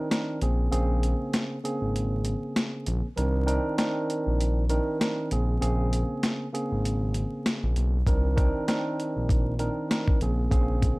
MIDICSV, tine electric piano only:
0, 0, Header, 1, 2, 480
1, 0, Start_track
1, 0, Tempo, 612245
1, 564, Time_signature, 4, 2, 24, 8
1, 8617, End_track
2, 0, Start_track
2, 0, Title_t, "Tine electric piano"
2, 0, Program_c, 0, 4
2, 78, Note_on_c, 0, 51, 74
2, 81, Note_on_c, 0, 60, 66
2, 85, Note_on_c, 0, 62, 65
2, 88, Note_on_c, 0, 70, 83
2, 304, Note_off_c, 0, 51, 0
2, 306, Note_off_c, 0, 60, 0
2, 308, Note_off_c, 0, 62, 0
2, 309, Note_off_c, 0, 70, 0
2, 325, Note_on_c, 0, 49, 76
2, 329, Note_on_c, 0, 58, 70
2, 333, Note_on_c, 0, 60, 70
2, 336, Note_on_c, 0, 68, 88
2, 545, Note_off_c, 0, 49, 0
2, 550, Note_off_c, 0, 58, 0
2, 552, Note_off_c, 0, 60, 0
2, 553, Note_off_c, 0, 68, 0
2, 555, Note_on_c, 0, 49, 90
2, 558, Note_on_c, 0, 58, 75
2, 562, Note_on_c, 0, 60, 84
2, 565, Note_on_c, 0, 68, 101
2, 1230, Note_off_c, 0, 49, 0
2, 1232, Note_off_c, 0, 58, 0
2, 1233, Note_off_c, 0, 60, 0
2, 1235, Note_off_c, 0, 68, 0
2, 1280, Note_on_c, 0, 49, 91
2, 1283, Note_on_c, 0, 58, 78
2, 1286, Note_on_c, 0, 60, 79
2, 1289, Note_on_c, 0, 68, 96
2, 2399, Note_off_c, 0, 49, 0
2, 2401, Note_off_c, 0, 58, 0
2, 2402, Note_off_c, 0, 60, 0
2, 2404, Note_off_c, 0, 68, 0
2, 2479, Note_on_c, 0, 51, 84
2, 2482, Note_on_c, 0, 60, 82
2, 2485, Note_on_c, 0, 62, 80
2, 2489, Note_on_c, 0, 70, 95
2, 2705, Note_off_c, 0, 51, 0
2, 2706, Note_off_c, 0, 60, 0
2, 2708, Note_off_c, 0, 62, 0
2, 2710, Note_off_c, 0, 70, 0
2, 2713, Note_on_c, 0, 51, 93
2, 2716, Note_on_c, 0, 60, 84
2, 2720, Note_on_c, 0, 62, 87
2, 2723, Note_on_c, 0, 70, 98
2, 2942, Note_off_c, 0, 51, 0
2, 2944, Note_off_c, 0, 60, 0
2, 2945, Note_off_c, 0, 62, 0
2, 2947, Note_off_c, 0, 70, 0
2, 2959, Note_on_c, 0, 51, 94
2, 2963, Note_on_c, 0, 60, 82
2, 2966, Note_on_c, 0, 62, 83
2, 2969, Note_on_c, 0, 70, 98
2, 3632, Note_off_c, 0, 51, 0
2, 3634, Note_off_c, 0, 60, 0
2, 3635, Note_off_c, 0, 62, 0
2, 3637, Note_off_c, 0, 70, 0
2, 3676, Note_on_c, 0, 51, 106
2, 3679, Note_on_c, 0, 60, 76
2, 3682, Note_on_c, 0, 62, 84
2, 3686, Note_on_c, 0, 70, 101
2, 3903, Note_off_c, 0, 51, 0
2, 3905, Note_off_c, 0, 60, 0
2, 3907, Note_off_c, 0, 62, 0
2, 3908, Note_off_c, 0, 70, 0
2, 3918, Note_on_c, 0, 51, 74
2, 3922, Note_on_c, 0, 60, 66
2, 3925, Note_on_c, 0, 62, 66
2, 3929, Note_on_c, 0, 70, 83
2, 4144, Note_off_c, 0, 51, 0
2, 4146, Note_off_c, 0, 60, 0
2, 4148, Note_off_c, 0, 62, 0
2, 4150, Note_off_c, 0, 70, 0
2, 4166, Note_on_c, 0, 49, 75
2, 4170, Note_on_c, 0, 58, 73
2, 4173, Note_on_c, 0, 60, 66
2, 4176, Note_on_c, 0, 68, 91
2, 4386, Note_off_c, 0, 49, 0
2, 4390, Note_off_c, 0, 58, 0
2, 4392, Note_off_c, 0, 60, 0
2, 4393, Note_off_c, 0, 68, 0
2, 4395, Note_on_c, 0, 49, 90
2, 4398, Note_on_c, 0, 58, 73
2, 4401, Note_on_c, 0, 60, 87
2, 4406, Note_on_c, 0, 68, 100
2, 5070, Note_off_c, 0, 49, 0
2, 5072, Note_off_c, 0, 58, 0
2, 5073, Note_off_c, 0, 60, 0
2, 5075, Note_off_c, 0, 68, 0
2, 5119, Note_on_c, 0, 49, 89
2, 5123, Note_on_c, 0, 58, 81
2, 5127, Note_on_c, 0, 60, 78
2, 5130, Note_on_c, 0, 68, 95
2, 6239, Note_off_c, 0, 49, 0
2, 6241, Note_off_c, 0, 58, 0
2, 6243, Note_off_c, 0, 60, 0
2, 6244, Note_off_c, 0, 68, 0
2, 6318, Note_on_c, 0, 51, 81
2, 6321, Note_on_c, 0, 60, 85
2, 6324, Note_on_c, 0, 62, 78
2, 6328, Note_on_c, 0, 70, 96
2, 6544, Note_off_c, 0, 51, 0
2, 6546, Note_off_c, 0, 60, 0
2, 6547, Note_off_c, 0, 62, 0
2, 6549, Note_off_c, 0, 70, 0
2, 6553, Note_on_c, 0, 51, 91
2, 6556, Note_on_c, 0, 60, 84
2, 6560, Note_on_c, 0, 62, 86
2, 6563, Note_on_c, 0, 70, 97
2, 6782, Note_off_c, 0, 51, 0
2, 6783, Note_off_c, 0, 60, 0
2, 6785, Note_off_c, 0, 62, 0
2, 6787, Note_off_c, 0, 70, 0
2, 6799, Note_on_c, 0, 51, 95
2, 6802, Note_on_c, 0, 60, 86
2, 6806, Note_on_c, 0, 62, 82
2, 6809, Note_on_c, 0, 70, 98
2, 7472, Note_off_c, 0, 51, 0
2, 7473, Note_off_c, 0, 60, 0
2, 7475, Note_off_c, 0, 62, 0
2, 7477, Note_off_c, 0, 70, 0
2, 7515, Note_on_c, 0, 51, 103
2, 7519, Note_on_c, 0, 60, 78
2, 7523, Note_on_c, 0, 62, 84
2, 7526, Note_on_c, 0, 70, 101
2, 7743, Note_off_c, 0, 51, 0
2, 7745, Note_off_c, 0, 60, 0
2, 7747, Note_off_c, 0, 62, 0
2, 7748, Note_off_c, 0, 70, 0
2, 7757, Note_on_c, 0, 51, 73
2, 7761, Note_on_c, 0, 60, 66
2, 7764, Note_on_c, 0, 62, 66
2, 7767, Note_on_c, 0, 70, 82
2, 7984, Note_off_c, 0, 51, 0
2, 7986, Note_off_c, 0, 60, 0
2, 7987, Note_off_c, 0, 62, 0
2, 7989, Note_off_c, 0, 70, 0
2, 8005, Note_on_c, 0, 49, 76
2, 8009, Note_on_c, 0, 58, 71
2, 8012, Note_on_c, 0, 60, 66
2, 8016, Note_on_c, 0, 68, 87
2, 8225, Note_off_c, 0, 49, 0
2, 8228, Note_off_c, 0, 58, 0
2, 8232, Note_off_c, 0, 60, 0
2, 8233, Note_off_c, 0, 68, 0
2, 8235, Note_on_c, 0, 49, 95
2, 8237, Note_on_c, 0, 58, 76
2, 8241, Note_on_c, 0, 60, 86
2, 8245, Note_on_c, 0, 68, 101
2, 8617, Note_off_c, 0, 49, 0
2, 8617, Note_off_c, 0, 58, 0
2, 8617, Note_off_c, 0, 60, 0
2, 8617, Note_off_c, 0, 68, 0
2, 8617, End_track
0, 0, End_of_file